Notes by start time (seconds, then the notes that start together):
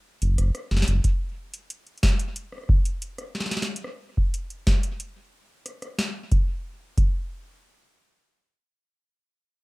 0.22 F#1, closed hi-hat
0.38 F#1, cross-stick, closed hi-hat
0.55 cross-stick, closed hi-hat
0.71 F#1, snare
0.77 snare
0.82 snare
0.88 F#1, closed hi-hat
1.04 kick, closed hi-hat
1.54 closed hi-hat
1.70 closed hi-hat
1.87 closed hi-hat
1.98 closed hi-hat
2.03 kick, cross-stick, snare
2.08 closed hi-hat
2.19 closed hi-hat
2.36 closed hi-hat
2.52 cross-stick
2.58 cross-stick
2.63 cross-stick
2.69 kick
2.85 closed hi-hat
3.02 closed hi-hat
3.18 cross-stick, closed hi-hat
3.35 snare
3.40 snare
3.46 snare
3.51 snare, closed hi-hat
3.57 snare
3.62 snare
3.76 closed hi-hat
3.84 cross-stick
4.17 kick
4.34 closed hi-hat
4.50 closed hi-hat
4.67 kick, cross-stick, snare
4.83 closed hi-hat
5.00 closed hi-hat
5.66 cross-stick, closed hi-hat
5.82 cross-stick, closed hi-hat
5.99 snare
6.32 kick, closed hi-hat
6.98 kick, closed hi-hat